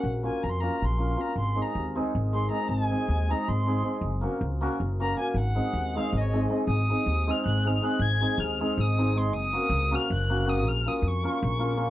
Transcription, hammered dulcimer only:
X:1
M:7/8
L:1/8
Q:1/4=158
K:Abmix
V:1 name="Hammered dulcimer"
z [B,DFB] z [B,DFB] z [B,DFB] [B,DFB] | z [A,CEA] z [A,CEA] z [A,CEA] [A,CEA] | z [A,CEA] z [A,CEA] z [A,CEA] [A,CEA] | z [B,DGB] z [B,DGB] z [B,DGB] [B,DGB] |
z [A,CEA] z [A,CEA] z [A,CEA] [A,CEA] | z [A,CEA] z [A,CEA] z [A,CEA] [A,CEA] | z [A,CEA] z [A,CEA] z [A,CEA] [A,CEA] | z [B,DGB] z [B,DGB] z [B,DGB] [B,DGB] |
z [B,DFB] z [B,DFB] z [B,DFB] [B,DFB] |]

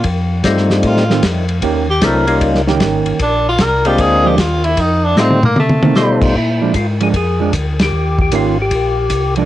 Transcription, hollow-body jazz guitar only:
X:1
M:4/4
L:1/8
Q:"Swing" 1/4=152
K:Fdor
V:1 name="Hollow-body jazz guitar"
z4 z [E,=A,C] z2 | [E,B,_DG] z4 [E,B,DG]3 | z4 z [F,A,D] z2 | z4 z [E,=A,C] z2 |
z [F,A,D] z [F,A,D] z [F,A,D] z2 | z2 [E,B,_DG] z4 [F,A,=D] |]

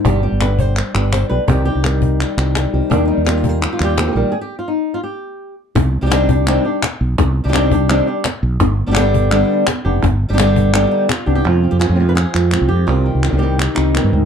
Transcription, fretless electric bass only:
X:1
M:4/4
L:1/16
Q:1/4=168
K:none
V:1 name="Fretless electric bass" clef=bass
G,,,3 G,,,6- G,,, G,,,4 B,,, z | C,,3 C,,6- C,, C,,4 C,, z | _E,,3 E,,6- E,, E,,4 _B,,, z | z16 |
C,,3 C,,8 z3 B,,,2 | C,,3 C,,8 z3 B,,,2 | G,,,3 G,,,8 z3 F,,,2 | G,,,3 G,,,8 z3 C,,2 |
F,,3 F,,2 F,,4- F,, F,,3 C,, F,,2 | C,,3 C,,2 C,,4- C,, C,,3 G,, D,,2 |]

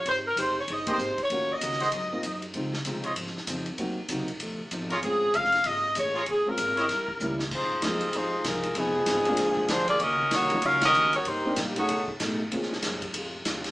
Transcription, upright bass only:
X:1
M:4/4
L:1/8
Q:"Swing" 1/4=193
K:Abmix
V:1 name="Upright bass" clef=bass
A,,,2 F,,,2 =G,,,2 A,,, z | E,,2 D,,2 A,,2 G,,2 | D,2 C,2 A,,2 F,,2 | E,,2 (3D,, C,, B,,, =B,,, z A,,,2 |
B,,,2 F,,,2 A,,,2 =A,,,2 | B,,,2 A,,,2 E,,2 D,,2 | E,,2 F,,2 E,,2 C,,2 | F,,,2 A,,,2 B,,,2 =D,,2 |
(3E,, D,, B,,, C,,2 D,,2 E,,2 | =G,,2 B,,2 =B,,2 =A,,2 | B,,2 G,,2 F,,2 E,,2 |]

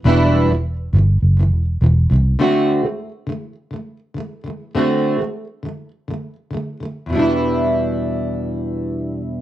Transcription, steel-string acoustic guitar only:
X:1
M:4/4
L:1/16
Q:1/4=102
K:Em
V:1 name="Steel-string acoustic guitar" clef=bass
[E,,B,,E,G,DE]3 [E,,B,,E,]2 z [E,,B,,E,]2 z [E,,B,,E,]2 z [E,,B,,E,]2 [E,,B,,E,]2 | [D,A,CF]3 [D,A,]2 z [D,A,]2 z [D,A,]2 z [D,A,]2 [D,A,]2 | [D,A,CF]3 [D,A,]2 z [D,A,]2 z [D,A,]2 z [D,A,]2 [D,A,]2 | [E,,B,,E,G,DE]16 |]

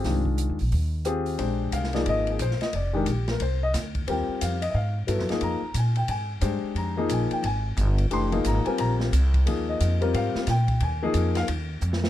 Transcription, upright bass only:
X:1
M:4/4
L:1/8
Q:"Swing" 1/4=178
K:Ablyd
V:1 name="Upright bass" clef=bass
C,,2- (3C,, E,, B,,, E,,4 | [K:Bbmix] B,,,2 C,,2 A,,,2 B,,, z | F,,,2 B,,,2 C,,2 D,,2 | E,, z F,,2 A,,2 (3G,, F,, E,, |
F,, z B,,2 A,,2 G,, z | F,,2 B,,, z A,,,2 G,,,2 | F,,,2 A,,, z B,,,2 C,,2 | E,,2 F,,2 A,, z B,,2 |
E,,2 F,,2 E,,2 F,,2 |]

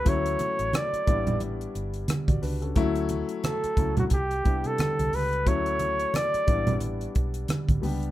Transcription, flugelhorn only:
X:1
M:4/4
L:1/16
Q:"Swing 16ths" 1/4=89
K:D
V:1 name="Flugelhorn"
c4 d4 z8 | z4 A3 F G3 A3 B2 | c4 d4 z8 |]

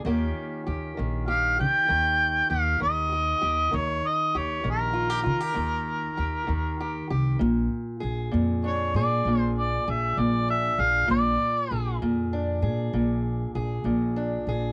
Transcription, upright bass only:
X:1
M:12/8
L:1/8
Q:3/8=65
K:Bbmix
V:1 name="Upright bass" clef=bass
E,, z E,, B,,,2 E, E,,2 E,, E,,2 E,, | E,, z E,, B,,,2 E, E,,2 E,, E,,2 C,, | B,,, z B,,, F,,2 B,, B,,,2 B,,, B,,,2 B,,, | B,,, z B,,, F,,2 B,, B,,,2 B,,, B,,,2 B,,, |]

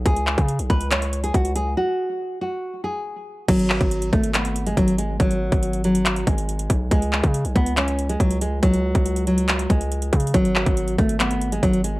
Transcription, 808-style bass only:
X:1
M:4/4
L:1/16
Q:1/4=140
K:G#phr
V:1 name="808-style bass" clef=bass
C,,3 C,2 B,,, C,,6 C,,4 | z16 | G,,,3 G,,,3 G,,,6 G,,,4 | G,,,3 G,,,6- G,,, G,,,4 B,,,2 |
C,,3 C,2 B,,, C,,6 C,,4 | C,,3 C,,6- C,, C,,4 C,2 | G,,,3 G,,,3 G,,,6 G,,,4 |]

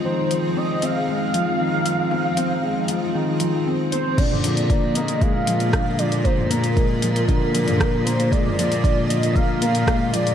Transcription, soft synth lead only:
X:1
M:4/4
L:1/8
Q:1/4=116
K:Bbmix
V:1 name="Soft synth lead"
c2 e f4- f- | f6 z c | d3 e f3 d | c B6 c |
d3 e f3 d |]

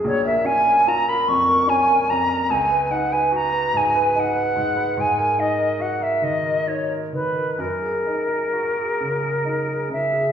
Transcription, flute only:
X:1
M:3/4
L:1/16
Q:1/4=72
K:F#
V:1 name="Flute"
c =e g2 a b c'2 g2 a2 | g2 f g a2 g2 f4 | g2 d2 f =e d2 c2 B2 | A8- A2 =e2 |]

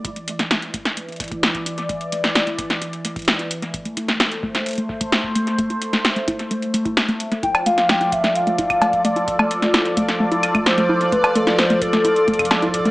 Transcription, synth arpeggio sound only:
X:1
M:4/4
L:1/16
Q:1/4=130
K:Ephr
V:1 name="Synth arpeggio sound"
z A, z A, E z A, z A, E z A, z A, E z | A, z A, E z A, z A, E z A, z A, E z A, | z A, E z A, z A, E z A, z A, E z A, z | A, E z A, z A, E z A, z A, E z A, z A, |
E z A, z A, E z A, z A, E z A, z A, E | z A, z A, E z A, z A, E z A, z A, E z | A, z A, E z A, z A, E z A, z A, E z A, |]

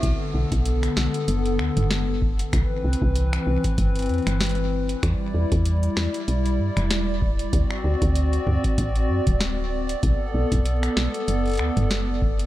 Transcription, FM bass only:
X:1
M:4/4
L:1/16
Q:"Swing 16ths" 1/4=96
K:Bphr
V:1 name="FM bass" clef=bass
B,,, z B,,, B,,,2 z B,,, z F,,,2 D,, F,,,4 z | C,, z C,, C,,2 z C,, z G,,,2 E,, G,,,4 z | E,, z E,, E,,2 z E,, z B,,,2 G,, E,,,4 z | D,, z D,, D,,2 z D,, z A,,,2 F,, D,,,4 z |
B,,, z B,,, B,,,2 z B,,, z F,,,2 D,, F,,,4 z |]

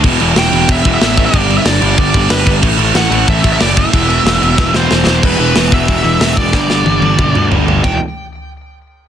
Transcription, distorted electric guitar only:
X:1
M:4/4
L:1/8
Q:1/4=185
K:Em
V:1 name="Distorted electric guitar" clef=bass
[E,,B,,E,] [E,,B,,E,] [E,,B,,E,] [E,,B,,E,] [E,,B,,E,] [E,,B,,E,] [E,,B,,E,] [E,,B,,E,] | [G,,D,G,] [G,,D,G,] [G,,D,G,] [G,,D,G,] [G,,D,G,] [G,,D,G,] [G,,D,G,] [G,,D,G,] | [A,,E,A,] [A,,E,A,] [A,,E,A,] [A,,E,A,] [A,,E,A,] [A,,E,A,] [A,,E,A,] [A,,E,A,] | [E,,B,,E,] [E,,B,,E,] [E,,B,,E,] [E,,B,,E,] [E,,B,,E,] [E,,B,,E,] [E,,B,,E,] [E,,B,,E,] |
[E,,B,,E,] [E,,B,,E,] [E,,B,,E,] [E,,B,,E,] [E,,B,,E,] [E,,B,,E,] [E,,B,,E,] [E,,B,,E,] | [G,,D,G,] [G,,D,G,] [G,,D,G,] [G,,D,G,] [G,,D,G,] [G,,D,G,] [G,,D,G,] [G,,D,G,] | [E,,B,,E,] z6 z |]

